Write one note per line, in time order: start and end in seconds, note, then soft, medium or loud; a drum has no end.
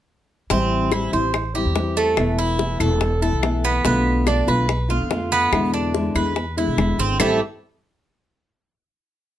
0.50 1.10 A1 medium
0.50 0.91 E3 medium
0.50 0.92 G3 medium
0.50 0.91 C4 medium
0.50 0.92 C4 medium
0.50 0.92 E4 medium
0.50 high bongo medium
0.92 1.12 E3 soft
0.92 1.13 G3 soft
0.92 1.13 C4 soft
0.92 1.13 E4 medium
0.92 1.12 E4 soft
0.92 high bongo medium
0.92 claves medium
1.13 1.63 A1 medium
1.13 1.33 G3 medium
1.13 1.34 C4 medium
1.13 1.33 E4 medium
1.13 1.54 C5 medium
1.13 high bongo soft
1.34 muted nylon-string guitar stroke medium
1.34 high bongo medium
1.34 claves medium
1.55 1.75 G3 soft
1.55 1.76 C4 soft
1.55 1.75 E4 medium
1.55 1.96 G4 medium
1.55 high bongo soft
1.66 2.15 E2 medium
1.75 2.16 E3 soft
1.75 2.17 G3 soft
1.75 2.17 C4 medium
1.75 2.18 E4 soft
1.75 high bongo medium
1.75 low bongo medium
1.97 2.37 A3 medium
1.97 high bongo soft
2.17 2.77 E1 medium
2.17 2.58 E3 medium
2.17 2.59 A3 medium
2.17 2.59 B3 medium
2.17 2.59 E4 medium
2.17 high bongo medium
2.17 claves medium
2.39 2.79 E4 medium
2.59 2.79 E3 soft
2.59 2.80 A3 soft
2.59 2.80 B3 soft
2.59 2.78 E4 medium
2.59 high bongo medium
2.80 3.30 E1 medium
2.80 3.00 A3 medium
2.80 3.00 B3 medium
2.80 3.00 E4 medium
2.80 3.21 A4 medium
2.80 high bongo soft
2.80 claves medium
3.00 muted nylon-string guitar stroke medium
3.00 high bongo medium
3.22 3.42 A3 soft
3.22 3.43 B3 medium
3.22 3.42 E4 medium
3.22 3.63 A4 medium
3.22 high bongo soft
3.33 3.82 B1 medium
3.43 3.84 E3 soft
3.43 3.84 A3 soft
3.43 3.85 B3 soft
3.43 3.85 E4 medium
3.43 high bongo medium
3.43 low bongo medium
3.43 claves medium
3.64 3.84 B3 medium
3.64 high bongo soft
3.85 4.45 B1 medium
3.85 4.26 B2 medium
3.85 4.26 D3 medium
3.85 4.27 A3 medium
3.85 4.26 B3 medium
3.85 4.27 B3 medium
3.85 4.27 F4 medium
3.85 high bongo medium
4.27 4.47 D3 soft
4.27 4.47 A3 medium
4.27 4.47 B3 soft
4.27 4.47 D4 medium
4.27 4.46 F4 soft
4.27 high bongo medium
4.27 claves medium
4.47 4.97 B1 medium
4.47 4.67 D3 soft
4.47 4.67 A3 medium
4.47 4.68 B3 medium
4.47 4.68 F4 medium
4.47 4.89 B4 medium
4.47 high bongo soft
4.68 muted nylon-string guitar stroke medium
4.68 high bongo medium
4.68 claves medium
4.89 5.08 D3 soft
4.89 5.09 A3 medium
4.89 5.10 B3 medium
4.89 5.09 F4 medium
4.89 5.30 F4 medium
4.89 high bongo soft
5.00 5.50 F2 medium
5.09 5.51 D3 medium
5.09 5.52 A3 soft
5.09 5.52 B3 soft
5.09 5.52 F4 soft
5.09 high bongo medium
5.09 low bongo medium
5.32 5.72 B3 medium
5.32 high bongo soft
5.52 6.12 E2 medium
5.52 5.93 B2 medium
5.52 5.93 D3 medium
5.52 5.94 G#3 medium
5.52 5.94 B3 medium
5.52 5.94 E4 medium
5.52 high bongo medium
5.52 claves medium
5.74 6.14 D4 medium
5.94 6.14 D3 soft
5.94 6.15 G#3 medium
5.94 6.14 B3 soft
5.94 6.13 E4 soft
5.94 high bongo medium
6.15 6.65 E2 medium
6.15 6.35 D3 medium
6.15 6.35 G#3 medium
6.15 6.36 B3 medium
6.15 6.35 E4 medium
6.15 6.56 B4 medium
6.15 high bongo soft
6.15 claves medium
6.36 muted nylon-string guitar stroke medium
6.36 high bongo medium
6.57 6.76 D3 soft
6.57 6.78 G#3 soft
6.57 6.78 B3 medium
6.57 6.77 E4 medium
6.57 6.98 E4 medium
6.57 high bongo soft
6.67 6.77 B1 medium
6.77 6.97 E1 medium
6.77 7.19 D3 soft
6.77 7.20 G#3 soft
6.77 7.20 B3 soft
6.77 7.20 E4 medium
6.77 high bongo medium
6.77 low bongo medium
6.77 claves medium
6.98 7.17 G#1 medium
6.98 7.20 C4 medium
6.98 high bongo soft
7.19 7.39 A1 medium
7.19 7.36 A2 medium
7.19 7.37 E3 medium
7.19 7.37 G3 medium
7.19 7.39 A3 medium
7.19 7.37 C4 medium
7.19 7.40 E4 medium
7.19 7.38 E4 medium
7.19 7.40 G4 loud
7.19 low bongo loud
7.19 claves medium